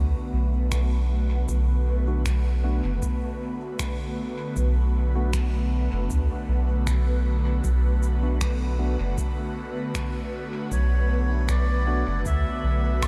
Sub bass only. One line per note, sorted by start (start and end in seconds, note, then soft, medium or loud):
0.00 0.13 D2 medium
0.33 1.45 B1 medium
1.48 2.81 B1 medium
2.84 3.00 F#1 medium
4.56 5.88 B1 medium
5.93 6.08 F#1 medium
6.10 6.28 D2 medium
6.49 7.61 B1 medium
7.64 8.96 B1 medium
9.00 9.16 F#1 medium
10.72 12.04 B1 medium
12.08 12.23 F#1 medium
12.26 12.44 D2 medium
12.64 13.08 B1 medium